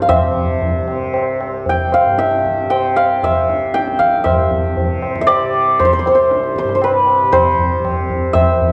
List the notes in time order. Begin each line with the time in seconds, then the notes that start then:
Already playing: C2 G2 C3 C5 D5
0.02 F5
0.09 E5, tabla na, tabla ge
0.25 C3
0.36 tabla ge
0.62 tabla tin, tabla ge
0.84 C3, tabla na
1.14 tabla na
1.41 tabla na
1.45 C2
1.66 G5, tabla tin, tabla ge
1.93 F5, tabla na
2.05 G2
2.18 E5, tabla te
2.31 tabla te
2.45 tabla ke
2.58 tabla te
2.66 C3
2.70 G5, tabla na
2.96 F5, tabla na
3.23 C3 E5, tabla na, tabla ge
3.50 tabla te
3.74 G5, tabla te
3.86 C2, tabla te
3.99 F5, tabla ke
4.14 tabla te
4.24 G2 E5, tabla na, tabla ge
4.51 tabla ge
4.77 tabla tin, tabla ge
4.83 C3
5.02 tabla na
5.16 tabla ke
5.21 E5
5.27 D5, tabla na
5.42 C3
5.54 tabla na
5.79 C5, tabla tin, tabla ge
5.85 C5
5.93 C5
5.99 C2 C5
6.06 C5, tabla na
6.15 C5
6.31 tabla te
6.43 tabla te
6.56 C5, tabla ke
6.63 G2
6.69 tabla te
6.75 C5
6.82 B4, tabla na
7.07 tabla na
7.23 C3
7.32 C5, tabla na, tabla ge
7.59 tabla ge
7.80 C3
7.85 tabla na, tabla ge
8.10 tabla ge
8.33 E5, tabla na, tabla ge
8.42 C2
8.61 tabla ge